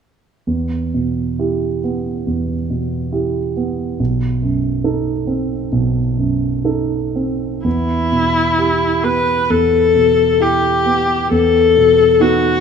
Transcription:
0.47 grand piano E2
0.94 grand piano B2
1.39 grand piano E4 G4
1.84 grand piano B3
2.27 grand piano E2
2.70 grand piano B2
3.12 grand piano E4 G4
3.57 grand piano B3
4.00 grand piano B1
4.42 grand piano F#2
4.84 grand piano D#4 A4
5.27 grand piano C4
5.72 grand piano B1
6.17 grand piano F#2
6.64 grand piano D#4 A4
7.16 grand piano C4
7.64 grand piano E2, viola E4
8.12 grand piano B2
8.58 grand piano E4 G4
9.04 grand piano B3, viola B4
9.50 grand piano E2, viola A4
9.95 grand piano B2
10.40 grand piano E4 G4, viola G4
10.86 grand piano B3
11.31 grand piano E2, viola A4
11.77 grand piano B2
12.20 grand piano B3 D#4, viola F#4

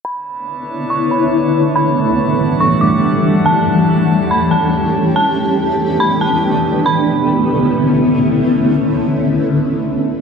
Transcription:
0.05 ambient pad D3 A3 B3 E4 C#5, synth texture D4 B4 C#5 E5 A5, synth bell B5
0.90 synth bell C#6
1.11 synth bell B5
1.75 ambient pad E3 G3 D4 F#5, synth texture E4 G4 D5 F#5 A5, synth bell B5
2.60 synth bell C#6
2.81 synth bell D6
3.45 ambient pad C#4 G4, synth texture C#5 A5, synth bell A5
4.31 synth bell B5
4.51 synth bell A5
5.16 ambient pad A3 B3 D4, synth bell A5
6.00 synth bell B5
6.21 synth bell A5
6.86 ambient pad D3 A3 B3 C#4 E4, synth bell B5

